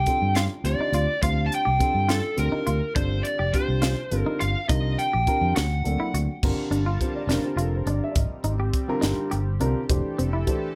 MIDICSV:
0, 0, Header, 1, 8, 480
1, 0, Start_track
1, 0, Tempo, 578035
1, 1020, Time_signature, 6, 3, 24, 8
1, 8928, End_track
2, 0, Start_track
2, 0, Title_t, "Lead electric guitar"
2, 0, Program_c, 0, 29
2, 0, Note_on_c, 0, 79, 85
2, 296, Note_on_c, 0, 77, 83
2, 318, Note_off_c, 0, 79, 0
2, 361, Note_off_c, 0, 77, 0
2, 549, Note_on_c, 0, 74, 84
2, 1017, Note_off_c, 0, 74, 0
2, 1020, Note_on_c, 0, 77, 89
2, 1207, Note_off_c, 0, 77, 0
2, 1213, Note_on_c, 0, 81, 69
2, 1266, Note_off_c, 0, 81, 0
2, 1286, Note_on_c, 0, 79, 90
2, 1744, Note_on_c, 0, 69, 77
2, 1767, Note_off_c, 0, 79, 0
2, 1965, Note_off_c, 0, 69, 0
2, 1989, Note_on_c, 0, 70, 79
2, 2431, Note_off_c, 0, 70, 0
2, 2453, Note_on_c, 0, 72, 81
2, 2683, Note_on_c, 0, 74, 71
2, 2704, Note_off_c, 0, 72, 0
2, 2937, Note_on_c, 0, 72, 75
2, 2939, Note_off_c, 0, 74, 0
2, 3469, Note_off_c, 0, 72, 0
2, 3469, Note_on_c, 0, 70, 75
2, 3658, Note_on_c, 0, 77, 86
2, 3680, Note_off_c, 0, 70, 0
2, 3888, Note_off_c, 0, 77, 0
2, 3892, Note_on_c, 0, 75, 80
2, 4139, Note_on_c, 0, 79, 90
2, 4143, Note_off_c, 0, 75, 0
2, 4586, Note_off_c, 0, 79, 0
2, 4618, Note_on_c, 0, 78, 75
2, 5126, Note_off_c, 0, 78, 0
2, 8928, End_track
3, 0, Start_track
3, 0, Title_t, "Analog synth pad"
3, 0, Program_c, 1, 89
3, 5342, Note_on_c, 1, 81, 54
3, 5346, Note_on_c, 1, 65, 54
3, 5348, Note_on_c, 1, 55, 63
3, 5350, Note_on_c, 1, 70, 73
3, 6751, Note_off_c, 1, 55, 0
3, 6761, Note_on_c, 1, 55, 60
3, 6765, Note_on_c, 1, 60, 57
3, 6766, Note_on_c, 1, 67, 63
3, 6767, Note_off_c, 1, 81, 0
3, 6769, Note_off_c, 1, 65, 0
3, 6770, Note_off_c, 1, 70, 0
3, 8196, Note_off_c, 1, 55, 0
3, 8197, Note_off_c, 1, 60, 0
3, 8222, Note_on_c, 1, 52, 55
3, 8225, Note_on_c, 1, 69, 71
3, 8928, Note_off_c, 1, 52, 0
3, 8928, Note_off_c, 1, 67, 0
3, 8928, Note_off_c, 1, 69, 0
3, 8928, End_track
4, 0, Start_track
4, 0, Title_t, "Clean electric guitar"
4, 0, Program_c, 2, 27
4, 0, Note_on_c, 2, 67, 66
4, 112, Note_off_c, 2, 67, 0
4, 302, Note_on_c, 2, 65, 72
4, 472, Note_off_c, 2, 65, 0
4, 669, Note_on_c, 2, 63, 57
4, 751, Note_off_c, 2, 63, 0
4, 784, Note_on_c, 2, 65, 70
4, 953, Note_off_c, 2, 65, 0
4, 1025, Note_on_c, 2, 65, 72
4, 1194, Note_off_c, 2, 65, 0
4, 1373, Note_on_c, 2, 67, 67
4, 1546, Note_off_c, 2, 67, 0
4, 1732, Note_on_c, 2, 65, 79
4, 1906, Note_off_c, 2, 65, 0
4, 2093, Note_on_c, 2, 63, 66
4, 2181, Note_off_c, 2, 63, 0
4, 2214, Note_on_c, 2, 65, 74
4, 2387, Note_off_c, 2, 65, 0
4, 2458, Note_on_c, 2, 62, 91
4, 2630, Note_off_c, 2, 62, 0
4, 2816, Note_on_c, 2, 67, 70
4, 2988, Note_off_c, 2, 67, 0
4, 3171, Note_on_c, 2, 65, 70
4, 3345, Note_off_c, 2, 65, 0
4, 3541, Note_on_c, 2, 63, 69
4, 3626, Note_off_c, 2, 63, 0
4, 3655, Note_on_c, 2, 65, 72
4, 3827, Note_off_c, 2, 65, 0
4, 3899, Note_on_c, 2, 63, 81
4, 4070, Note_off_c, 2, 63, 0
4, 4263, Note_on_c, 2, 67, 66
4, 4433, Note_off_c, 2, 67, 0
4, 4617, Note_on_c, 2, 66, 82
4, 4789, Note_off_c, 2, 66, 0
4, 4980, Note_on_c, 2, 64, 69
4, 5066, Note_off_c, 2, 64, 0
4, 5102, Note_on_c, 2, 66, 63
4, 5272, Note_off_c, 2, 66, 0
4, 5574, Note_on_c, 2, 62, 70
4, 5661, Note_off_c, 2, 62, 0
4, 5699, Note_on_c, 2, 65, 58
4, 5870, Note_off_c, 2, 65, 0
4, 6053, Note_on_c, 2, 62, 83
4, 6226, Note_off_c, 2, 62, 0
4, 6288, Note_on_c, 2, 65, 67
4, 6463, Note_off_c, 2, 65, 0
4, 6537, Note_on_c, 2, 62, 69
4, 6709, Note_off_c, 2, 62, 0
4, 7011, Note_on_c, 2, 63, 71
4, 7099, Note_off_c, 2, 63, 0
4, 7138, Note_on_c, 2, 67, 61
4, 7310, Note_off_c, 2, 67, 0
4, 7485, Note_on_c, 2, 63, 73
4, 7661, Note_off_c, 2, 63, 0
4, 7733, Note_on_c, 2, 67, 77
4, 7906, Note_off_c, 2, 67, 0
4, 7979, Note_on_c, 2, 62, 64
4, 8150, Note_off_c, 2, 62, 0
4, 8458, Note_on_c, 2, 60, 72
4, 8544, Note_off_c, 2, 60, 0
4, 8579, Note_on_c, 2, 64, 59
4, 8750, Note_off_c, 2, 64, 0
4, 8928, End_track
5, 0, Start_track
5, 0, Title_t, "Grand piano"
5, 0, Program_c, 3, 0
5, 54, Note_on_c, 3, 50, 61
5, 57, Note_on_c, 3, 60, 64
5, 58, Note_on_c, 3, 55, 61
5, 60, Note_on_c, 3, 65, 62
5, 62, Note_on_c, 3, 69, 74
5, 377, Note_off_c, 3, 50, 0
5, 378, Note_off_c, 3, 60, 0
5, 379, Note_off_c, 3, 55, 0
5, 380, Note_off_c, 3, 65, 0
5, 380, Note_off_c, 3, 69, 0
5, 531, Note_on_c, 3, 50, 69
5, 534, Note_on_c, 3, 55, 67
5, 535, Note_on_c, 3, 60, 61
5, 536, Note_on_c, 3, 65, 63
5, 541, Note_on_c, 3, 72, 76
5, 855, Note_off_c, 3, 50, 0
5, 856, Note_off_c, 3, 55, 0
5, 857, Note_off_c, 3, 60, 0
5, 858, Note_off_c, 3, 65, 0
5, 860, Note_off_c, 3, 72, 0
5, 1010, Note_on_c, 3, 50, 67
5, 1012, Note_on_c, 3, 55, 60
5, 1016, Note_on_c, 3, 72, 61
5, 1017, Note_on_c, 3, 65, 59
5, 1018, Note_on_c, 3, 60, 57
5, 1335, Note_off_c, 3, 50, 0
5, 1336, Note_off_c, 3, 55, 0
5, 1338, Note_off_c, 3, 65, 0
5, 1338, Note_off_c, 3, 72, 0
5, 1339, Note_off_c, 3, 60, 0
5, 1489, Note_on_c, 3, 50, 75
5, 1491, Note_on_c, 3, 55, 63
5, 1493, Note_on_c, 3, 60, 64
5, 1498, Note_on_c, 3, 65, 63
5, 1498, Note_on_c, 3, 69, 74
5, 1814, Note_off_c, 3, 50, 0
5, 1815, Note_off_c, 3, 55, 0
5, 1816, Note_off_c, 3, 60, 0
5, 1818, Note_off_c, 3, 69, 0
5, 1819, Note_off_c, 3, 65, 0
5, 1960, Note_on_c, 3, 55, 61
5, 1961, Note_on_c, 3, 50, 69
5, 1966, Note_on_c, 3, 60, 61
5, 1968, Note_on_c, 3, 65, 60
5, 1970, Note_on_c, 3, 67, 67
5, 2290, Note_off_c, 3, 50, 0
5, 2290, Note_off_c, 3, 55, 0
5, 2292, Note_off_c, 3, 60, 0
5, 2293, Note_off_c, 3, 65, 0
5, 2294, Note_off_c, 3, 67, 0
5, 2447, Note_on_c, 3, 50, 69
5, 2454, Note_on_c, 3, 55, 58
5, 2457, Note_on_c, 3, 60, 60
5, 2458, Note_on_c, 3, 65, 54
5, 2459, Note_on_c, 3, 69, 64
5, 2773, Note_off_c, 3, 50, 0
5, 2777, Note_off_c, 3, 55, 0
5, 2778, Note_off_c, 3, 60, 0
5, 2779, Note_off_c, 3, 65, 0
5, 2779, Note_off_c, 3, 69, 0
5, 2937, Note_on_c, 3, 50, 68
5, 2939, Note_on_c, 3, 55, 61
5, 2939, Note_on_c, 3, 60, 54
5, 2940, Note_on_c, 3, 65, 61
5, 2947, Note_on_c, 3, 67, 70
5, 3258, Note_off_c, 3, 50, 0
5, 3259, Note_off_c, 3, 55, 0
5, 3259, Note_off_c, 3, 60, 0
5, 3260, Note_off_c, 3, 65, 0
5, 3263, Note_off_c, 3, 67, 0
5, 3411, Note_on_c, 3, 50, 68
5, 3414, Note_on_c, 3, 55, 65
5, 3417, Note_on_c, 3, 60, 72
5, 3417, Note_on_c, 3, 69, 75
5, 3418, Note_on_c, 3, 65, 69
5, 3735, Note_off_c, 3, 50, 0
5, 3736, Note_off_c, 3, 55, 0
5, 3738, Note_off_c, 3, 60, 0
5, 3738, Note_off_c, 3, 69, 0
5, 3739, Note_off_c, 3, 65, 0
5, 3887, Note_on_c, 3, 50, 65
5, 3890, Note_on_c, 3, 55, 55
5, 3893, Note_on_c, 3, 60, 61
5, 3894, Note_on_c, 3, 65, 58
5, 3899, Note_on_c, 3, 70, 69
5, 4213, Note_off_c, 3, 50, 0
5, 4215, Note_off_c, 3, 55, 0
5, 4216, Note_off_c, 3, 60, 0
5, 4217, Note_off_c, 3, 65, 0
5, 4219, Note_off_c, 3, 70, 0
5, 4376, Note_on_c, 3, 50, 74
5, 4377, Note_on_c, 3, 55, 63
5, 4381, Note_on_c, 3, 65, 68
5, 4384, Note_on_c, 3, 60, 66
5, 4385, Note_on_c, 3, 70, 86
5, 4618, Note_off_c, 3, 50, 0
5, 4619, Note_off_c, 3, 55, 0
5, 4620, Note_off_c, 3, 65, 0
5, 4622, Note_off_c, 3, 60, 0
5, 4623, Note_off_c, 3, 70, 0
5, 4852, Note_on_c, 3, 54, 60
5, 4854, Note_on_c, 3, 58, 63
5, 4859, Note_on_c, 3, 60, 62
5, 4862, Note_on_c, 3, 62, 64
5, 4863, Note_on_c, 3, 69, 70
5, 5176, Note_off_c, 3, 54, 0
5, 5177, Note_off_c, 3, 58, 0
5, 5179, Note_off_c, 3, 60, 0
5, 5181, Note_off_c, 3, 62, 0
5, 5181, Note_off_c, 3, 69, 0
5, 5338, Note_on_c, 3, 50, 79
5, 5340, Note_on_c, 3, 55, 64
5, 5342, Note_on_c, 3, 60, 65
5, 5346, Note_on_c, 3, 65, 69
5, 5351, Note_on_c, 3, 70, 77
5, 5658, Note_off_c, 3, 50, 0
5, 5660, Note_off_c, 3, 55, 0
5, 5661, Note_off_c, 3, 60, 0
5, 5663, Note_off_c, 3, 65, 0
5, 5665, Note_off_c, 3, 70, 0
5, 5817, Note_on_c, 3, 50, 62
5, 5821, Note_on_c, 3, 55, 54
5, 5824, Note_on_c, 3, 60, 58
5, 5825, Note_on_c, 3, 65, 61
5, 5826, Note_on_c, 3, 72, 71
5, 5942, Note_on_c, 3, 74, 59
5, 5978, Note_off_c, 3, 50, 0
5, 5980, Note_off_c, 3, 55, 0
5, 5982, Note_off_c, 3, 60, 0
5, 5982, Note_off_c, 3, 65, 0
5, 5983, Note_off_c, 3, 72, 0
5, 6052, Note_on_c, 3, 50, 62
5, 6058, Note_off_c, 3, 74, 0
5, 6059, Note_on_c, 3, 55, 55
5, 6060, Note_on_c, 3, 65, 51
5, 6061, Note_on_c, 3, 70, 69
5, 6062, Note_on_c, 3, 60, 52
5, 6064, Note_on_c, 3, 72, 67
5, 6136, Note_off_c, 3, 50, 0
5, 6139, Note_off_c, 3, 55, 0
5, 6140, Note_off_c, 3, 65, 0
5, 6141, Note_off_c, 3, 60, 0
5, 6142, Note_off_c, 3, 72, 0
5, 6171, Note_on_c, 3, 50, 59
5, 6175, Note_on_c, 3, 55, 56
5, 6177, Note_off_c, 3, 70, 0
5, 6178, Note_on_c, 3, 60, 55
5, 6182, Note_on_c, 3, 65, 55
5, 6183, Note_on_c, 3, 72, 69
5, 6187, Note_on_c, 3, 67, 58
5, 6300, Note_off_c, 3, 67, 0
5, 6323, Note_on_c, 3, 69, 76
5, 6428, Note_off_c, 3, 69, 0
5, 6432, Note_off_c, 3, 72, 0
5, 6444, Note_on_c, 3, 72, 64
5, 6545, Note_on_c, 3, 74, 78
5, 6549, Note_off_c, 3, 72, 0
5, 6659, Note_off_c, 3, 74, 0
5, 6673, Note_on_c, 3, 76, 85
5, 6739, Note_on_c, 3, 74, 49
5, 6770, Note_off_c, 3, 74, 0
5, 6776, Note_off_c, 3, 50, 0
5, 6778, Note_off_c, 3, 55, 0
5, 6779, Note_off_c, 3, 60, 0
5, 6779, Note_on_c, 3, 75, 62
5, 6781, Note_off_c, 3, 65, 0
5, 6783, Note_off_c, 3, 76, 0
5, 6923, Note_off_c, 3, 75, 0
5, 7374, Note_on_c, 3, 50, 99
5, 7375, Note_on_c, 3, 55, 85
5, 7378, Note_on_c, 3, 65, 87
5, 7380, Note_on_c, 3, 60, 79
5, 7385, Note_on_c, 3, 70, 110
5, 7776, Note_off_c, 3, 50, 0
5, 7777, Note_off_c, 3, 55, 0
5, 7779, Note_off_c, 3, 65, 0
5, 7780, Note_off_c, 3, 60, 0
5, 7782, Note_off_c, 3, 70, 0
5, 7971, Note_on_c, 3, 50, 92
5, 7975, Note_on_c, 3, 55, 79
5, 7978, Note_on_c, 3, 65, 76
5, 7979, Note_on_c, 3, 60, 87
5, 7982, Note_on_c, 3, 70, 103
5, 8135, Note_off_c, 3, 50, 0
5, 8137, Note_off_c, 3, 55, 0
5, 8139, Note_off_c, 3, 60, 0
5, 8139, Note_off_c, 3, 65, 0
5, 8141, Note_off_c, 3, 70, 0
5, 8216, Note_on_c, 3, 52, 67
5, 8218, Note_on_c, 3, 57, 63
5, 8218, Note_on_c, 3, 62, 79
5, 8222, Note_on_c, 3, 67, 70
5, 8223, Note_on_c, 3, 72, 89
5, 8537, Note_off_c, 3, 52, 0
5, 8538, Note_off_c, 3, 57, 0
5, 8538, Note_off_c, 3, 62, 0
5, 8540, Note_off_c, 3, 67, 0
5, 8541, Note_off_c, 3, 72, 0
5, 8691, Note_on_c, 3, 52, 67
5, 8694, Note_on_c, 3, 57, 72
5, 8698, Note_on_c, 3, 67, 72
5, 8700, Note_on_c, 3, 62, 64
5, 8702, Note_on_c, 3, 72, 78
5, 8855, Note_off_c, 3, 52, 0
5, 8856, Note_off_c, 3, 57, 0
5, 8858, Note_off_c, 3, 67, 0
5, 8860, Note_off_c, 3, 62, 0
5, 8860, Note_off_c, 3, 72, 0
5, 8928, End_track
6, 0, Start_track
6, 0, Title_t, "Fingered electric bass"
6, 0, Program_c, 4, 33
6, 181, Note_on_c, 4, 43, 78
6, 388, Note_off_c, 4, 43, 0
6, 531, Note_on_c, 4, 38, 84
6, 639, Note_off_c, 4, 38, 0
6, 768, Note_on_c, 4, 38, 79
6, 877, Note_off_c, 4, 38, 0
6, 1020, Note_on_c, 4, 38, 108
6, 1228, Note_off_c, 4, 38, 0
6, 1385, Note_on_c, 4, 36, 83
6, 1487, Note_off_c, 4, 36, 0
6, 1617, Note_on_c, 4, 43, 84
6, 1826, Note_off_c, 4, 43, 0
6, 1978, Note_on_c, 4, 38, 78
6, 2083, Note_off_c, 4, 38, 0
6, 2221, Note_on_c, 4, 38, 83
6, 2324, Note_off_c, 4, 38, 0
6, 2456, Note_on_c, 4, 31, 102
6, 2666, Note_off_c, 4, 31, 0
6, 2820, Note_on_c, 4, 29, 72
6, 2924, Note_off_c, 4, 29, 0
6, 3061, Note_on_c, 4, 36, 80
6, 3268, Note_off_c, 4, 36, 0
6, 3420, Note_on_c, 4, 31, 87
6, 3524, Note_off_c, 4, 31, 0
6, 3669, Note_on_c, 4, 31, 92
6, 3769, Note_off_c, 4, 31, 0
6, 3901, Note_on_c, 4, 36, 98
6, 4108, Note_off_c, 4, 36, 0
6, 4271, Note_on_c, 4, 34, 70
6, 4370, Note_off_c, 4, 34, 0
6, 4495, Note_on_c, 4, 41, 82
6, 4601, Note_off_c, 4, 41, 0
6, 4628, Note_on_c, 4, 38, 85
6, 4833, Note_off_c, 4, 38, 0
6, 4863, Note_on_c, 4, 38, 81
6, 4965, Note_off_c, 4, 38, 0
6, 5098, Note_on_c, 4, 38, 89
6, 5203, Note_off_c, 4, 38, 0
6, 5343, Note_on_c, 4, 31, 86
6, 5446, Note_off_c, 4, 31, 0
6, 5569, Note_on_c, 4, 31, 73
6, 5781, Note_off_c, 4, 31, 0
6, 6038, Note_on_c, 4, 29, 85
6, 6152, Note_off_c, 4, 29, 0
6, 6280, Note_on_c, 4, 29, 73
6, 6497, Note_off_c, 4, 29, 0
6, 6529, Note_on_c, 4, 31, 74
6, 6638, Note_off_c, 4, 31, 0
6, 6780, Note_on_c, 4, 32, 90
6, 6884, Note_off_c, 4, 32, 0
6, 7007, Note_on_c, 4, 32, 75
6, 7221, Note_off_c, 4, 32, 0
6, 7499, Note_on_c, 4, 31, 82
6, 7603, Note_off_c, 4, 31, 0
6, 7745, Note_on_c, 4, 31, 78
6, 7951, Note_off_c, 4, 31, 0
6, 7980, Note_on_c, 4, 36, 85
6, 8084, Note_off_c, 4, 36, 0
6, 8215, Note_on_c, 4, 29, 93
6, 8321, Note_off_c, 4, 29, 0
6, 8462, Note_on_c, 4, 29, 77
6, 8669, Note_off_c, 4, 29, 0
6, 8928, End_track
7, 0, Start_track
7, 0, Title_t, "Muted fingered electric bass strokes"
7, 657, Note_on_c, 9, 29, 33
7, 740, Note_off_c, 9, 29, 0
7, 2099, Note_on_c, 9, 29, 31
7, 2182, Note_off_c, 9, 29, 0
7, 3551, Note_on_c, 9, 29, 36
7, 3634, Note_off_c, 9, 29, 0
7, 4989, Note_on_c, 9, 29, 33
7, 5072, Note_off_c, 9, 29, 0
7, 5449, Note_on_c, 9, 29, 34
7, 5532, Note_off_c, 9, 29, 0
7, 6163, Note_on_c, 9, 29, 30
7, 6246, Note_off_c, 9, 29, 0
7, 6892, Note_on_c, 9, 29, 31
7, 6975, Note_off_c, 9, 29, 0
7, 7620, Note_on_c, 9, 29, 31
7, 7703, Note_off_c, 9, 29, 0
7, 8351, Note_on_c, 9, 29, 34
7, 8435, Note_off_c, 9, 29, 0
7, 8928, End_track
8, 0, Start_track
8, 0, Title_t, "Drums"
8, 50, Note_on_c, 9, 42, 52
8, 55, Note_on_c, 9, 36, 61
8, 134, Note_off_c, 9, 42, 0
8, 138, Note_off_c, 9, 36, 0
8, 292, Note_on_c, 9, 42, 60
8, 302, Note_on_c, 9, 38, 82
8, 375, Note_off_c, 9, 42, 0
8, 385, Note_off_c, 9, 38, 0
8, 538, Note_on_c, 9, 42, 59
8, 621, Note_off_c, 9, 42, 0
8, 776, Note_on_c, 9, 42, 55
8, 859, Note_off_c, 9, 42, 0
8, 1018, Note_on_c, 9, 42, 91
8, 1019, Note_on_c, 9, 36, 109
8, 1101, Note_off_c, 9, 42, 0
8, 1102, Note_off_c, 9, 36, 0
8, 1263, Note_on_c, 9, 42, 68
8, 1346, Note_off_c, 9, 42, 0
8, 1499, Note_on_c, 9, 36, 68
8, 1499, Note_on_c, 9, 42, 54
8, 1582, Note_off_c, 9, 36, 0
8, 1582, Note_off_c, 9, 42, 0
8, 1736, Note_on_c, 9, 42, 70
8, 1746, Note_on_c, 9, 38, 101
8, 1819, Note_off_c, 9, 42, 0
8, 1829, Note_off_c, 9, 38, 0
8, 1973, Note_on_c, 9, 42, 50
8, 2056, Note_off_c, 9, 42, 0
8, 2215, Note_on_c, 9, 42, 55
8, 2298, Note_off_c, 9, 42, 0
8, 2456, Note_on_c, 9, 36, 113
8, 2458, Note_on_c, 9, 42, 80
8, 2539, Note_off_c, 9, 36, 0
8, 2541, Note_off_c, 9, 42, 0
8, 2696, Note_on_c, 9, 42, 58
8, 2779, Note_off_c, 9, 42, 0
8, 2937, Note_on_c, 9, 36, 69
8, 2941, Note_on_c, 9, 42, 49
8, 3020, Note_off_c, 9, 36, 0
8, 3024, Note_off_c, 9, 42, 0
8, 3171, Note_on_c, 9, 42, 61
8, 3181, Note_on_c, 9, 38, 95
8, 3254, Note_off_c, 9, 42, 0
8, 3264, Note_off_c, 9, 38, 0
8, 3417, Note_on_c, 9, 42, 57
8, 3500, Note_off_c, 9, 42, 0
8, 3659, Note_on_c, 9, 42, 54
8, 3742, Note_off_c, 9, 42, 0
8, 3898, Note_on_c, 9, 36, 108
8, 3901, Note_on_c, 9, 42, 82
8, 3981, Note_off_c, 9, 36, 0
8, 3984, Note_off_c, 9, 42, 0
8, 4143, Note_on_c, 9, 42, 61
8, 4226, Note_off_c, 9, 42, 0
8, 4377, Note_on_c, 9, 42, 52
8, 4378, Note_on_c, 9, 36, 62
8, 4460, Note_off_c, 9, 42, 0
8, 4461, Note_off_c, 9, 36, 0
8, 4617, Note_on_c, 9, 42, 74
8, 4627, Note_on_c, 9, 38, 98
8, 4700, Note_off_c, 9, 42, 0
8, 4710, Note_off_c, 9, 38, 0
8, 4861, Note_on_c, 9, 42, 50
8, 4944, Note_off_c, 9, 42, 0
8, 5103, Note_on_c, 9, 42, 61
8, 5186, Note_off_c, 9, 42, 0
8, 5340, Note_on_c, 9, 36, 97
8, 5344, Note_on_c, 9, 49, 99
8, 5423, Note_off_c, 9, 36, 0
8, 5427, Note_off_c, 9, 49, 0
8, 5581, Note_on_c, 9, 42, 56
8, 5664, Note_off_c, 9, 42, 0
8, 5819, Note_on_c, 9, 36, 60
8, 5821, Note_on_c, 9, 42, 47
8, 5902, Note_off_c, 9, 36, 0
8, 5904, Note_off_c, 9, 42, 0
8, 6057, Note_on_c, 9, 42, 67
8, 6067, Note_on_c, 9, 38, 87
8, 6140, Note_off_c, 9, 42, 0
8, 6150, Note_off_c, 9, 38, 0
8, 6298, Note_on_c, 9, 42, 57
8, 6381, Note_off_c, 9, 42, 0
8, 6533, Note_on_c, 9, 42, 49
8, 6616, Note_off_c, 9, 42, 0
8, 6772, Note_on_c, 9, 42, 80
8, 6774, Note_on_c, 9, 36, 103
8, 6855, Note_off_c, 9, 42, 0
8, 6858, Note_off_c, 9, 36, 0
8, 7008, Note_on_c, 9, 42, 53
8, 7091, Note_off_c, 9, 42, 0
8, 7253, Note_on_c, 9, 42, 50
8, 7254, Note_on_c, 9, 36, 69
8, 7336, Note_off_c, 9, 42, 0
8, 7337, Note_off_c, 9, 36, 0
8, 7492, Note_on_c, 9, 42, 65
8, 7502, Note_on_c, 9, 38, 93
8, 7575, Note_off_c, 9, 42, 0
8, 7585, Note_off_c, 9, 38, 0
8, 7735, Note_on_c, 9, 42, 53
8, 7818, Note_off_c, 9, 42, 0
8, 7977, Note_on_c, 9, 42, 52
8, 8060, Note_off_c, 9, 42, 0
8, 8217, Note_on_c, 9, 36, 107
8, 8217, Note_on_c, 9, 42, 83
8, 8300, Note_off_c, 9, 36, 0
8, 8300, Note_off_c, 9, 42, 0
8, 8462, Note_on_c, 9, 42, 53
8, 8545, Note_off_c, 9, 42, 0
8, 8695, Note_on_c, 9, 42, 51
8, 8697, Note_on_c, 9, 36, 62
8, 8778, Note_off_c, 9, 42, 0
8, 8780, Note_off_c, 9, 36, 0
8, 8928, End_track
0, 0, End_of_file